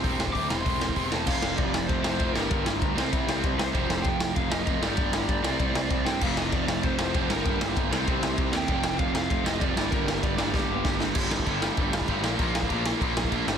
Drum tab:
CC |----------------|x---------------|----------------|----------------|
RD |----------------|----x---x---x---|x---x---x---x---|x---x---x---x---|
HH |o---o---o---o---|----------------|----------------|----------------|
SD |--o---o---o---o-|--o---o---o---o-|--o---o---o---o-|--o---o---o---o-|
BD |o--oo---o--oo---|o---o---o---o---|o---o---o---o---|o---o---o---o---|

CC |----------------|x---------------|----------------|----------------|
RD |x---x---x---x---|----x---x---x---|x---x---x---x---|x---x---x---x---|
HH |----------------|----------------|----------------|----------------|
SD |--o---o---o---o-|--o---o---o---o-|--o---o---o---o-|--o---o---o---o-|
BD |o---o---o---o---|o---o---o---o---|o---o---o---o---|o---o---o---o---|

CC |----------------|x---x---x---x---|x---x---x---x---|
RD |x---x-----------|----------------|----------------|
HH |----------------|----------------|----------------|
SD |--o---o-o---o-o-|--o---o---o---o-|--o---o---o---o-|
BD |o---o---o---o---|o--oo---o--oo---|o--oo---o--oo---|